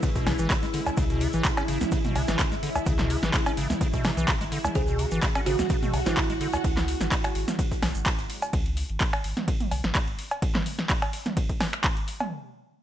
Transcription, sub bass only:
0.27 0.36 B1 loud
0.39 0.47 G#1 medium
0.63 0.71 G#1 medium
0.97 1.28 C#2 loud
1.34 1.42 G#1 medium
1.68 1.78 G#1 medium
2.16 2.25 B1 loud
2.28 2.36 G#1 loud
2.52 2.60 G#1 medium
2.86 3.17 C#2 loud
3.23 3.31 G#1 medium
3.57 3.66 G#1 medium
4.17 4.25 B1 loud
4.41 4.49 G#1 medium
4.75 5.06 C#2 loud
5.12 5.20 G#1 medium
5.46 5.55 G#1 medium
5.93 6.03 B1 loud
6.06 6.14 G#1 loud
6.30 6.38 G#1 medium
6.64 6.95 C#2 loud
7.01 7.09 G#1 medium
7.35 7.44 G#1 medium
7.82 7.92 B1 medium
7.95 8.03 G#1 loud
8.19 8.27 G#1 medium
8.53 8.84 C#2 loud
8.90 8.98 G#1 medium
9.24 9.33 G#1 medium
9.71 9.81 B1 loud
9.84 9.92 G#1 loud
10.08 10.16 G#1 medium

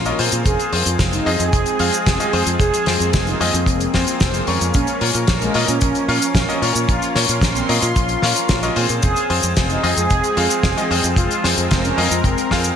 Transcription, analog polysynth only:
0.00 0.35 F4 loud
0.46 0.72 G#4 loud
1.13 1.30 D#4 medium
1.40 2.49 G#4 loud
2.60 2.86 G#4 loud
3.27 3.44 D#4 loud
3.54 4.64 C4 loud
4.74 5.00 C#4 loud
5.42 5.59 G#3 loud
5.68 6.78 C#4 loud
6.89 7.14 F4 loud
7.56 7.73 C4 medium
7.83 8.92 F4 loud
9.03 9.29 G#4 loud
9.70 9.87 D#4 medium
9.97 11.07 G#4 loud
11.17 11.43 F4 loud
11.84 12.02 C#4 medium
12.11 12.76 C4 loud

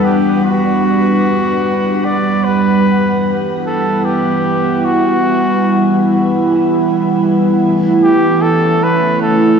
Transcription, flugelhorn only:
0.05 0.44 G4 medium
0.44 2.06 F#4 medium
2.05 2.46 D5 medium
2.44 3.38 B4 medium
3.67 4.06 A4 medium
4.05 4.86 G4 medium
4.85 6.45 F#4 medium
8.03 8.43 G4 medium
8.42 8.85 A4 medium
8.83 9.21 B4 medium
9.22 9.60 A4 medium

